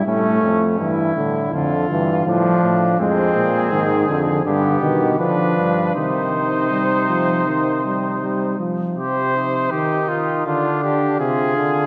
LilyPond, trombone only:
\new Staff \with { instrumentName = "Trombone" } { \clef bass \time 4/4 \key d \phrygian \tempo 4 = 81 a4 e8 d8 d8 e8 f4 | \key c \minor aes8 r8 ees8 d8 d8 ees8 f4 | ees4 g8 f8 ees8 g8 g8 f8 | r1 | }